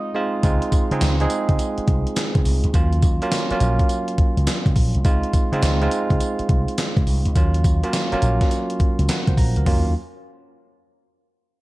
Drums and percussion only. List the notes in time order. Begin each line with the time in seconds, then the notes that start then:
0.43 kick, closed hi-hat, tambourine
0.62 closed hi-hat
0.72 kick, closed hi-hat, tambourine
0.91 closed hi-hat
1.01 snare, clap, closed hi-hat, tambourine
1.20 closed hi-hat
1.30 closed hi-hat, tambourine
1.49 kick, closed hi-hat
1.59 closed hi-hat, tambourine
1.78 closed hi-hat
1.88 kick, closed hi-hat
2.07 closed hi-hat
2.16 snare, clap, closed hi-hat, tambourine
2.35 kick, closed hi-hat
2.45 open hi-hat, tambourine
2.64 closed hi-hat
2.74 kick, closed hi-hat, tambourine
2.93 closed hi-hat
3.02 kick, closed hi-hat, tambourine
3.22 closed hi-hat
3.32 snare, clap, closed hi-hat, tambourine
3.51 closed hi-hat
3.60 closed hi-hat, tambourine
3.79 kick, closed hi-hat
3.89 closed hi-hat, tambourine
4.08 closed hi-hat
4.18 kick, closed hi-hat
4.37 closed hi-hat
4.47 snare, clap, closed hi-hat, tambourine
4.66 kick, closed hi-hat
4.76 kick, open hi-hat, tambourine
4.95 closed hi-hat
5.05 kick, closed hi-hat, tambourine
5.23 closed hi-hat
5.33 kick, closed hi-hat, tambourine
5.53 closed hi-hat
5.62 snare, clap, closed hi-hat, tambourine
5.82 closed hi-hat
5.91 closed hi-hat, tambourine
6.10 kick, closed hi-hat
6.20 closed hi-hat, tambourine
6.39 closed hi-hat
6.49 kick, closed hi-hat
6.68 closed hi-hat
6.78 snare, clap, closed hi-hat, tambourine
6.97 kick, closed hi-hat
7.07 open hi-hat, tambourine
7.25 closed hi-hat
7.36 kick, closed hi-hat, tambourine
7.54 closed hi-hat
7.64 kick, closed hi-hat, tambourine
7.84 closed hi-hat
7.93 snare, clap, closed hi-hat, tambourine
8.12 closed hi-hat
8.22 closed hi-hat, tambourine
8.41 kick, snare, closed hi-hat
8.51 closed hi-hat, tambourine
8.70 closed hi-hat
8.80 kick, closed hi-hat
8.99 closed hi-hat
9.09 snare, clap, closed hi-hat, tambourine
9.27 kick, closed hi-hat
9.37 kick, open hi-hat, tambourine
9.56 closed hi-hat
9.66 kick, floor tom, open hi-hat